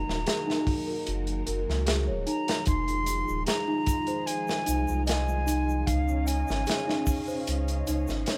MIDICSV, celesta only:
0, 0, Header, 1, 2, 480
1, 0, Start_track
1, 0, Key_signature, -4, "minor"
1, 0, Tempo, 800000
1, 1601, Time_signature, 4, 2, 24, 8
1, 5026, End_track
2, 0, Start_track
2, 0, Title_t, "Celesta"
2, 0, Program_c, 0, 8
2, 0, Control_c, 0, 64, 127
2, 0, Note_on_c, 0, 63, 76
2, 148, Note_off_c, 0, 63, 0
2, 158, Note_on_c, 0, 68, 86
2, 273, Note_off_c, 0, 68, 0
2, 282, Note_on_c, 0, 63, 97
2, 512, Note_off_c, 0, 63, 0
2, 524, Note_on_c, 0, 70, 73
2, 634, Note_off_c, 0, 70, 0
2, 879, Note_on_c, 0, 70, 73
2, 993, Note_off_c, 0, 70, 0
2, 1118, Note_on_c, 0, 68, 80
2, 1233, Note_off_c, 0, 68, 0
2, 1245, Note_on_c, 0, 73, 69
2, 1311, Note_off_c, 0, 73, 0
2, 1359, Note_on_c, 0, 63, 98
2, 1432, Note_off_c, 0, 63, 0
2, 1598, Note_on_c, 0, 63, 79
2, 1609, Control_c, 0, 64, 0
2, 1704, Control_c, 0, 64, 127
2, 2069, Note_off_c, 0, 63, 0
2, 2081, Note_on_c, 0, 68, 79
2, 2194, Note_off_c, 0, 68, 0
2, 2208, Note_on_c, 0, 63, 98
2, 2435, Note_off_c, 0, 63, 0
2, 2446, Note_on_c, 0, 72, 78
2, 2555, Note_off_c, 0, 72, 0
2, 2798, Note_on_c, 0, 63, 94
2, 3028, Note_off_c, 0, 63, 0
2, 3040, Note_on_c, 0, 75, 82
2, 3270, Note_off_c, 0, 75, 0
2, 3280, Note_on_c, 0, 63, 106
2, 3509, Note_off_c, 0, 63, 0
2, 3520, Note_on_c, 0, 63, 77
2, 3528, Control_c, 0, 64, 0
2, 3628, Control_c, 0, 64, 127
2, 3990, Note_off_c, 0, 63, 0
2, 4002, Note_on_c, 0, 68, 86
2, 4115, Note_off_c, 0, 68, 0
2, 4127, Note_on_c, 0, 63, 100
2, 4354, Note_off_c, 0, 63, 0
2, 4365, Note_on_c, 0, 72, 79
2, 4475, Note_off_c, 0, 72, 0
2, 4723, Note_on_c, 0, 63, 95
2, 4951, Note_off_c, 0, 63, 0
2, 4962, Note_on_c, 0, 73, 76
2, 5026, Note_off_c, 0, 73, 0
2, 5026, End_track
0, 0, End_of_file